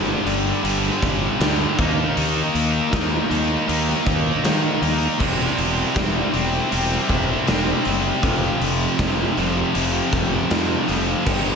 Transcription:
Already playing: G1 G2 D3 G3
0.25 G1 G2 D3 G3, open hi-hat
0.63 G1 G2 D3 G3, open hi-hat
0.85 snare
1.02 G1, kick, open hi-hat
1.40 D2 G2 D3 G3, snare, open hi-hat
1.78 D#2 D#3 A#3 D#4, kick, open hi-hat
2.16 D#2 D#3 A#3 D#4, open hi-hat
2.55 D#2, open hi-hat
2.92 D#2 D#3 A#3 D#4, kick, snare, open hi-hat
3.29 D#2 D#3 A#3 D#4, open hi-hat
3.68 D#2 D#3 A#3 D#4, open hi-hat
3.89 snare
4.05 D#2 D#3 A#3 D#4, kick, open hi-hat
4.44 D#3 A#3 D#4, snare, open hi-hat
4.82 D#2 D#3 A#3 D#4, open hi-hat
5.19 E1 C3 G3 C4, kick, crash
5.58 E1, open hi-hat
5.95 E1 C3 G3 C4, kick, snare, open hi-hat
6.32 E1 C3 G3 C4, open hi-hat
6.70 E1 C3 G3 C4, open hi-hat
6.91 snare
7.09 E1, kick, open hi-hat
7.47 E1 C3 G3 C4, snare, open hi-hat
7.84 F#1 C3 G3 C4, open hi-hat
8.22 F1 F2 C3 F3, kick, open hi-hat
8.61 F1, open hi-hat
8.98 F1 F2 C3 F3, kick, snare, open hi-hat
9.36 F1 F2 C3 F3, open hi-hat
9.74 F1 F2 C3 F3, open hi-hat
10.13 F1, kick, open hi-hat
10.50 F2 C3 F3, snare, open hi-hat
10.87 F1 F2 C3 F3, open hi-hat
11.25 G1 G2 D3 G3, kick, crash

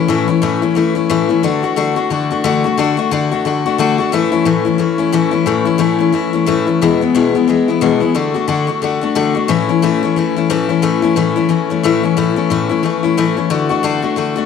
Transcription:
0.08 A2 E3 A3 C#4 E4
0.28 A3 C#4 E4
0.42 A2 E3 A3 C#4 E4
0.62 A3 C#4 E4
0.75 E3 A3 C#4 E4
0.95 A3 C#4 E4
1.10 A2 E3 A3 C#4 E4
1.29 A3 C#4 E4
1.43 D3 A3 D4 F#4
1.63 A3 D4 F#4
1.76 D3 A3 D4 F#4
1.96 A3 D4 F#4
2.10 D3 A3 D4 F#4
2.31 A3 D4 F#4
2.44 D3 A3 D4 F#4
2.64 A3 D4 F#4
2.77 D3 A3 D4 F#4
2.97 A3 D4 F#4
3.11 D3 A3 D4 F#4
3.31 A3 D4 F#4
3.45 D3 A3 D4 F#4
3.66 A3 D4 F#4
3.78 D3 A3 D4 F#4
3.98 A3 D4 F#4
4.12 A2 E3 A3 C#4 E4
4.32 A3 C#4 E4
4.45 A2 E3 A3 C#4 E4
4.65 A3 C#4 E4
4.78 E3 A3 C#4 E4
4.98 A3 C#4 E4
5.12 A2 E3 A3 C#4 E4
5.31 A3 C#4 E4
5.46 A2 E3 A3 C#4 E4
5.65 A3 C#4 E4
5.78 A2 E3 A3 C#4 E4
5.99 A3 C#4 E4
6.12 E3 A3 C#4 E4
6.33 A3 C#4 E4
6.46 A2 E3 A3 C#4 E4
6.67 A3 C#4 E4
6.82 E2 B2 E3 G#3 B3 E4
7.01 E3 G#3 B3 E4
7.15 E2 B2 E3 G#3 B3 E4
7.35 E3 G#3 B3 E4
7.48 E3 G#3 B3 E4
7.68 E3 G#3 B3 E4
7.81 E2 B2 E3 G#3 B3 E4
8.00 E3 G#3 B3 E4
8.15 D3 A3 D4 F#4
8.34 A3 D4 F#4
8.48 D3 A3 D4 F#4
8.67 A3 D4 F#4
8.82 D3 A3 D4 F#4
9.01 A3 D4 F#4
9.15 D3 A3 D4 F#4
9.35 A3 D4 F#4
9.48 A2 E3 A3 C#4 E4
9.69 A3 C#4 E4
9.82 A2 E3 A3 C#4 E4
10.03 A3 C#4 E4
10.16 E3 A3 C#4 E4
10.36 A3 C#4 E4
10.50 A2 E3 A3 C#4 E4
10.69 A3 C#4 E4
10.82 A2 E3 A3 C#4 E4
11.02 A3 C#4 E4
11.16 A2 E3 A3 C#4 E4
11.36 A3 C#4 E4
11.49 E3 A3 C#4 E4
11.70 A3 C#4 E4
11.83 A2 E3 A3 C#4 E4
12.03 A3 C#4 E4
12.17 A2 E3 A3 C#4 E4
12.36 A3 C#4 E4
12.50 A2 E3 A3 C#4 E4
12.69 A3 C#4 E4
12.83 E3 A3 C#4 E4
13.03 A3 C#4 E4
13.17 A2 E3 A3 C#4 E4
13.37 A3 C#4 E4
13.50 D3 A3 D4 F#4
13.69 A3 D4 F#4
13.83 D3 A3 D4 F#4
14.02 A3 D4 F#4
14.16 D3 A3 D4 F#4
14.36 A3 D4 F#4

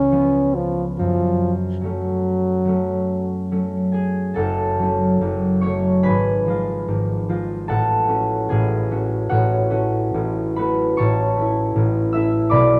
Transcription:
Already playing: C#2 C#4
0.11 F3 B3 C#4
0.55 F3
0.98 F#2 F3
1.81 F#3 A3
1.86 C#4
2.65 F#3 A3 C#4
3.51 F#3 A3 C#4
3.92 G#4 G#5
4.34 F#1 F#2 A4 F#5 A5
4.79 F#3 A3 C#4
5.21 F#1 F#2
5.61 F#3 A3 C#5 C#6
5.65 C#4
6.03 G#1 G#2 B4 G#5 B5
6.46 F3 G#3
6.50 F4
6.88 G#1 G#2
7.29 F3 G#3 F4
7.68 A1 A2 A4 F#5 A5
8.07 A3 C#4 F#4
8.49 A1 A2 G#4 G#5
8.91 A3 C#4 F#4
9.29 A1 A2 F#4 C#5 F#5
9.70 A3 C#4 F#4
10.14 A1 A2
10.56 A3 C#4 F#4 B4 B5
10.97 A1 A2 C#5 A5 C#6
11.36 A3 C#4
11.41 E4
11.76 A1 A2
12.13 A3 C#4 E4 E5 E6
12.50 B1 B2 D5 B5 D6

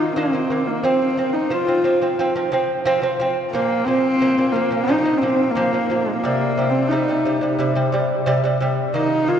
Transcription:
Already playing: D#4
0.16 D#3 A#3 C4
0.33 D#3 A#3
0.50 D#3 A#3
0.67 A#3
0.83 F3 C4
1.17 F3 C4
1.33 D#4
1.50 F3 C4 F4
1.67 F3 C4
1.84 F3 C4
2.02 F3 C4
2.19 F3 C4
2.36 F3 C4
2.52 F3 C4
2.85 F3 C4
3.02 F3 C4
3.20 F3 C4
3.52 A#2 F3 A#3
3.85 A#2 F3 C4
4.21 A#2 F3
4.38 A#2 F3
4.52 A#2 F3 A#3
4.71 A#2 F3
4.84 A#2 D#4
4.89 F3
5.01 A#2 D#4
5.06 F3
5.18 C4
5.22 A#2 F3
5.51 A#3
5.55 A#2 F3
5.73 A#2 F3
5.90 A#2 F3
6.00 G#3
6.17 A#3
6.24 C3 G3
6.57 C3 G3
6.70 C4
6.88 C3 G3 D#4
7.08 C3 G3
7.25 C3 G3
7.41 C3 G3
7.59 C3 G3
7.75 C3 G3
7.92 C3 G3
8.26 C3 G3
8.44 C3 G3
8.60 C3 G3
8.94 D#3 A#3 D#4
9.28 D#3 A#3 F4

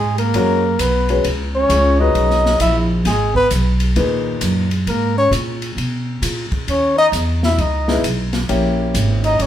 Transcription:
Already playing: G#2 G#3 G#4
0.18 A#3 A#4, ride
0.34 F#2 G#3 C#4 F#4 A#4, ride
0.79 B1 B3 B4, hi-hat pedal, ride
1.09 G#3 C#4 F#4 B4, ride
1.24 C#2, ride
1.55 C#4 C#5
1.69 C#2, hi-hat pedal, ride
1.99 G#3 C#4 D#4 F#4 B4 D#5
2.15 B1, ride
2.30 snare
2.46 snare
2.60 A#1 E4 E5, hi-hat pedal, ride
3.04 G#1 G#3 G#4, snare, ride
3.34 B3 B4, kick
3.50 B1, hi-hat pedal, ride
3.80 ride
3.96 D#2 A#2 D#4 G#4 B4, ride
4.41 F#2, hi-hat pedal, ride
4.71 ride
4.87 G#2 A#3 A#4, ride
5.17 C#4 C#5
5.31 A#2, hi-hat pedal, ride
5.62 ride
5.77 B2, ride
6.22 A#2, hi-hat pedal, ride
6.51 muted upright bass stroke, kick, ride
6.68 D#2 C#4 C#5, ride
6.97 D#4 D#5
7.12 E2, hi-hat pedal, ride
7.43 E4 E5, snare
7.58 C#2 D#4 D#5, ride
7.88 G#3 B3 D#4 E4, snare
8.03 B1, hi-hat pedal, ride
8.33 snare, ride
8.49 A#1 A#3 C#4 E4 G4, ride
8.94 G#1, hi-hat pedal, ride
9.24 D#4 D#5, ride
9.39 G1 C#4 C#5, ride

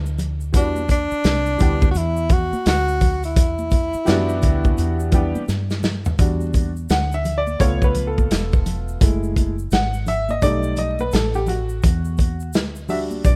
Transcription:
Already playing: D2
0.06 shaker
0.19 closed hi-hat, low conga, shaker
0.40 shaker
0.52 E2 E3 G3 B3 D4 F#4, kick, closed hi-hat, shaker
0.76 high conga, shaker
0.89 D4, kick, closed hi-hat, high conga, shaker
1.11 muted fretless electric bass stroke, shaker
1.24 C2, snare, closed hi-hat, shaker
1.46 shaker
1.58 D2 E3 G3 B3 D4 G4, kick, closed hi-hat, low conga, shaker
1.82 kick, high conga, shaker
1.91 E2 F#4, shaker
1.96 E4, closed hi-hat
2.16 shaker
2.29 F#4, kick, closed hi-hat, low conga, shaker
2.52 muted fretless electric bass stroke, high conga, shaker
2.66 D2 F#4, snare, closed hi-hat, shaker
2.88 shaker
3.01 kick, closed hi-hat, low conga, shaker
3.23 E4, closed hi-hat, shaker
3.36 E2, kick, closed hi-hat, shaker
3.59 high conga, shaker
3.71 kick, closed hi-hat, high conga, shaker
3.93 muted fretless electric bass stroke, shaker
4.05 F#2 E3 B3 D4 F#4 G4, snare, closed hi-hat, shaker
4.29 shaker
4.42 D2, kick, closed hi-hat, low conga, shaker
4.64 kick, high conga, shaker
4.78 E2, closed hi-hat, shaker
5.00 shaker
5.11 E3 G3 B3 D4 G4, kick, closed hi-hat, low conga, shaker
5.35 muted fretless electric bass stroke, high conga, shaker
5.48 G2, snare, shaker
5.70 snare, shaker
5.83 snare, low conga, shaker
6.05 floor tom, shaker
6.19 E2 G3 D4 F#4, kick, closed hi-hat, shaker
6.41 shaker
6.54 kick, closed hi-hat, high conga, shaker
6.76 shaker
6.89 D2 F#5, snare, closed hi-hat, shaker
7.12 E5, shaker
7.25 closed hi-hat, low conga, shaker
7.38 D5
7.47 high conga, shaker
7.59 C#2 A3 B3 F4 C#5, kick, closed hi-hat, shaker
7.82 B4, kick, shaker
7.95 closed hi-hat, low conga, shaker
8.07 A4
8.18 kick, high conga, shaker
8.31 E1, snare, closed hi-hat, shaker
8.53 kick, shaker
8.66 closed hi-hat, low conga, shaker
8.88 shaker
9.01 F#1 G#3 A3 E4, kick, closed hi-hat, shaker
9.24 shaker
9.36 kick, closed hi-hat, high conga, shaker
9.58 shaker
9.71 G#1 F#5, snare, closed hi-hat, shaker
9.93 shaker
10.06 E5, closed hi-hat, low conga, shaker
10.29 D#5, high conga, shaker
10.42 B1 G3 A3 D#4 D5, kick, closed hi-hat, shaker
10.63 shaker
10.76 D#5, closed hi-hat, low conga, shaker
10.99 B4, high conga, shaker
11.12 A1 A4, snare, closed hi-hat, shaker
11.34 G4, shaker
11.47 F#4, closed hi-hat, low conga, shaker
11.69 shaker
11.82 E2, kick, closed hi-hat, shaker
12.05 shaker
12.18 kick, closed hi-hat, high conga, shaker
12.40 shaker
12.53 D2, snare, closed hi-hat, shaker
12.75 shaker
12.89 G3 D4 F#4 E5, open hi-hat, low conga, shaker
13.11 high conga, shaker
13.24 B1 D5, kick, closed hi-hat, shaker

